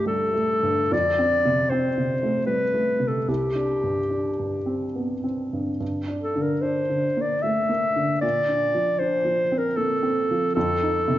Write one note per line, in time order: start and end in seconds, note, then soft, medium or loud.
0.00 0.88 C2 soft
0.00 0.63 G2 soft
0.00 0.22 A3 soft
0.00 0.94 D4 soft
0.06 0.34 G3 soft
0.06 0.94 A4 medium
0.34 0.81 A3 soft
0.63 0.92 G2 soft
0.92 3.24 F2 soft
0.92 1.72 D5 medium
1.19 1.60 C4 soft
1.45 1.86 C3 soft
1.70 2.12 C4 soft
1.70 2.46 C5 medium
1.98 2.38 C3 soft
2.23 2.64 A3 soft
2.46 2.73 G3 soft
2.46 3.10 B4 medium
2.74 3.17 A3 soft
3.00 3.28 C3 soft
3.08 3.30 A4 soft
3.28 5.77 C2 soft
3.28 4.96 G4 soft
3.55 4.00 D4 soft
3.83 4.28 G2 soft
4.10 4.56 D4 soft
4.39 4.85 G2 soft
4.66 5.12 C4 soft
4.95 5.24 B3 soft
5.24 5.70 C4 soft
5.53 5.79 G2 soft
5.80 8.19 G2 soft
6.08 6.52 D4 soft
6.23 6.43 A4 soft
6.36 6.79 D3 soft
6.42 6.63 A#4 soft
6.62 7.06 D4 soft
6.62 7.23 C5 soft
6.90 7.33 D3 soft
7.17 7.60 A#3 soft
7.22 7.44 D5 soft
7.42 7.70 A3 soft
7.42 8.21 E5 medium
7.69 8.12 A#3 soft
7.96 8.23 D3 soft
8.21 10.51 A#2 soft
8.21 9.01 D5 medium
8.49 8.90 D4 soft
8.75 9.16 F3 soft
8.99 9.42 D4 soft
8.99 9.60 C5 medium
9.25 9.67 F3 soft
9.52 9.94 C4 soft
9.58 9.78 A#4 medium
9.76 10.04 A#3 soft
9.76 10.55 A4 medium
10.03 10.45 C4 soft
10.31 10.56 F3 soft
10.55 11.19 F2 soft
10.55 11.19 A4 medium
10.82 11.19 D#4 soft
11.08 11.19 C3 soft